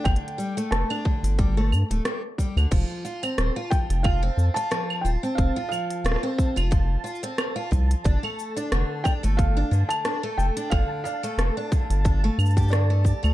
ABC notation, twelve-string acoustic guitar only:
X:1
M:4/4
L:1/16
Q:"Swing 16ths" 1/4=90
K:Gdor
V:1 name="Twelve-string acoustic guitar"
D,2 G, A,2 D D,2 G, A, z A, G, z G, D, | F,2 F C2 F F,2 F C2 F F,2 F C- | C F F,2 F C2 F F,2 F C2 F F,2 | D A,2 D D,2 D A,2 D D,2 D A,2 D |
D,2 D A,2 D D,2 D A, z G D, A, G A, |]